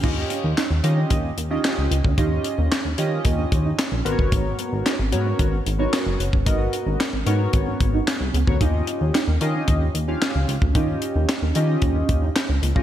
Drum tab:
CC |x---------------|----------------|----------------|----------------|
HH |--x-x-x-x-x-x-x-|x-x-x-x-x-x-x-x-|x-x-x-x-x-x-x-x-|x-x-x-x-x-x-x-x-|
CP |----x-------x---|----x-------x---|----x-------x---|----x-------x---|
SD |----o-------o---|----o-------o---|----o-------o---|----o-------o---|
BD |o-------o------o|o-------o-o----o|o-------o------o|o-------o-o----o|

CC |----------------|----------------|
HH |x-x-x-x-x-x-x-x-|x-x-x-x-x-x-x-x-|
CP |----x-------x---|----x-------x---|
SD |----o-------o---|----o-------o---|
BD |o-------o------o|o-------o-o----o|